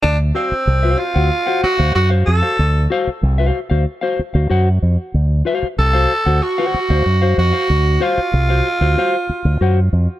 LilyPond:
<<
  \new Staff \with { instrumentName = "Clean electric guitar" } { \time 4/4 \key c \lydian \tempo 4 = 94 r8 <fis' c'' eis''>16 r8 <fis' c'' eis''>16 r16 <fis' c'' fis''>16 r16 <fis' c'' fis''>16 r16 <fis' c'' eis''>16 r16 <fis' c'' eis''>16 r16 <fis' c'' eis''>16 | r8 <fis' c'' eis''>16 r8 <fis' c'' eis''>16 r16 <fis' c'' eis''>16 r16 <fis' c'' eis''>16 r16 <fis' c'' eis''>16 <fis' c'' fis''>16 r8. | r8 <fis' c'' eis''>16 r8 <fis' c'' eis''>16 r16 <fis' c'' fis''>16 r16 <fis' c'' fis''>16 r16 <fis' c'' eis''>16 r16 <fis' c'' eis''>16 r16 <fis' c'' eis''>16 | r8 <fis' c'' eis''>16 r8 <fis' c'' eis''>16 r16 <fis' c'' eis''>16 <fis' c'' eis''>16 r8. <fis' c'' fis''>16 r8. | }
  \new Staff \with { instrumentName = "Tenor saxophone" } { \time 4/4 \key c \lydian d'8 c'4 eis'4 fis'8 fis'8 a'8~ | a'8 r2. r8 | r4 a'4 fis'4. fis'8~ | fis'8 eis'2. r8 | }
  \new Staff \with { instrumentName = "Fingered electric bass" } { \clef bass \time 4/4 \key c \lydian d,8 r8 c,8 r16 d,16 r8. d,16 fis,8 eis,16 r16 | d,8 r8 c,8 r16 d,16 r8. d,16 fis,8 eis,16 r16 | d,8 r8 c,8 r16 d,16 r8. d,16 fis,8 eis,16 r16 | d,8 r8 c,8 r16 d,16 r8. d,16 fis,8 eis,16 r16 | }
>>